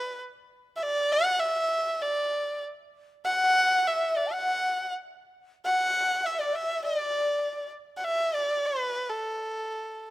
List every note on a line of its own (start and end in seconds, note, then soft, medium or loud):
0.00 0.20 B4 medium
0.76 0.84 E5 medium
0.83 1.13 D5 medium
1.12 1.41 F#5 loud
1.40 2.03 E5 medium
2.01 2.63 D5 medium
3.24 3.88 F#5 loud
3.24 3.69 F#5 medium
3.73 3.90 F#5 medium
3.87 4.18 E5 medium
3.87 4.28 E5 medium
4.16 4.34 D5 medium
4.27 4.35 A5 soft
4.33 4.93 F#5 medium
5.65 6.27 F#5 loud
5.65 6.26 F#5 medium
6.24 6.36 E5 medium
6.24 6.42 E5 medium
6.36 6.55 D5 medium
6.36 6.40 E5 soft
6.40 6.56 D5 medium
6.53 6.83 E5 medium
6.84 7.70 D5 medium
7.97 8.06 F#5 medium
8.04 8.36 E5 medium
8.34 8.67 D5 medium
8.65 9.11 B4 medium
9.09 10.10 A4 medium